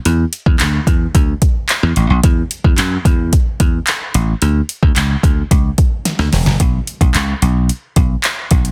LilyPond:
<<
  \new Staff \with { instrumentName = "Slap bass" } { \clef bass \time 4/4 \key d \lydian \tempo 4 = 110 e,8 r16 e,16 d,8 e,8 d,8 r8. e,16 a,,16 b,,16 | e,8 r16 e,16 fis,8 e,8. r16 e,8 r8 a,,8 | d,8 r16 d,16 cis,8 d,8 cis,8 r8. d,16 e,,16 fis,,16 | b,,8 r16 b,,16 cis,8 b,,8. r16 b,,8 r8 b,,8 | }
  \new DrumStaff \with { instrumentName = "Drums" } \drummode { \time 4/4 hh8 hh16 bd16 <hc hh>8 <hh bd>8 <hh bd>8 <hh bd>8 <hc hh>8 hh8 | <hh bd>8 hh16 bd16 <hc hh>8 <hh bd>8 <hh bd>8 <hh bd>8 <hc hh>8 hh8 | hh8 hh16 bd16 <hc hh>8 <hh bd>8 <hh bd>8 <hh bd>8 <hh sn>16 sn16 <hho sn>16 sn16 | <hh bd>8 hh16 <hh bd>16 <hc hh>8 hh8 hh8 <hh bd>8 <hc hh>8 <hh bd>16 hh16 | }
>>